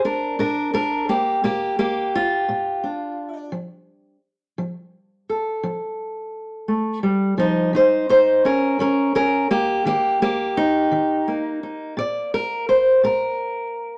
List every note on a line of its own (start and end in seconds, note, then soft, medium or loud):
0.05 0.38 D4 medium
0.05 0.39 A#4 medium
0.39 1.02 A#2 medium
0.39 0.72 D4 medium
0.39 0.73 A#4 medium
0.74 1.08 D4 medium
0.74 1.09 A#4 medium
1.09 1.43 A#3 medium
1.09 1.44 G4 medium
1.43 2.06 A#2 medium
1.43 1.77 A#3 medium
1.43 1.78 G4 medium
1.79 2.13 A#3 medium
1.79 2.84 G4 medium
2.15 3.54 F4 medium
2.48 3.11 A#2 medium
2.84 3.49 D4 soft
3.52 4.16 F3 medium
4.58 5.21 F3 medium
5.29 7.40 A4 soft
5.63 6.27 F3 medium
6.68 7.03 A3 soft
7.03 7.37 G3 medium
7.38 7.73 F3 medium
7.38 7.74 D#4 medium
7.38 7.75 C5 loud
7.73 8.37 D#3 medium
7.73 8.08 D#4 medium
7.73 8.09 C5 medium
8.09 8.44 D#4 medium
8.09 8.45 C5 loud
8.45 8.79 C#4 medium
8.45 8.80 A#4 medium
8.79 9.43 D#3 medium
8.79 9.14 C#4 medium
8.79 9.15 A#4 medium
9.15 9.50 C#4 medium
9.15 9.50 A#4 loud
9.51 9.85 A#3 medium
9.51 9.85 G4 medium
9.85 10.49 D#3 medium
9.85 10.21 A#3 medium
9.85 10.21 G4 medium
10.22 10.56 A#3 medium
10.22 11.27 G4 medium
10.57 11.62 D#4 medium
10.91 11.55 D#3 medium
11.28 13.98 A#3 soft
11.63 11.93 D#4 soft
11.97 12.60 A#2 medium
11.97 12.33 D5 medium
12.34 12.68 A#4 medium
12.69 13.03 C5 medium
13.03 13.67 A#2 medium
13.03 13.98 A#4 medium